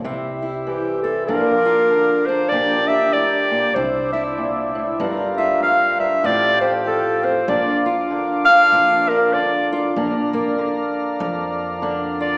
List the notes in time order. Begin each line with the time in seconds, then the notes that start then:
0.04 C2 C3 G3 C4 E4
0.42 E4
0.67 E3 G4
1.02 C4 A4
1.26 A#1 A#2 D4 F4 A#4 D5
1.65 F4
1.90 D3
2.26 D4 C5
2.49 A#1 A#2 D4 G4 D5
2.88 G4 E5
3.13 A2 D5
3.51 A#2
3.75 C2 C3 C4 D4 E4 C5
4.13 E4 E5
4.38 A#2
4.75 A2
5.00 G1 G2 G3 D4 F4 A#4
5.37 F4 E5
5.62 F2 F5
5.99 G2 E5
6.24 A1 A2 A3 C4 G4 D5
6.61 G4 C5
6.86 F3 A4
7.23 C4 C5
7.48 A#1 A#2 A#3 D4 F4 D5
7.86 F4
8.10 D3
8.45 D4 F5
8.72 A#1 F2 F4
9.09 D4 A#4
9.34 D3 D5
9.72 F4
9.96 A#1 A#2 D4 A#4 F5
10.33 A#1 A#3
10.58 D3
11.20 F2
11.82 D3 D4
12.20 F4 D5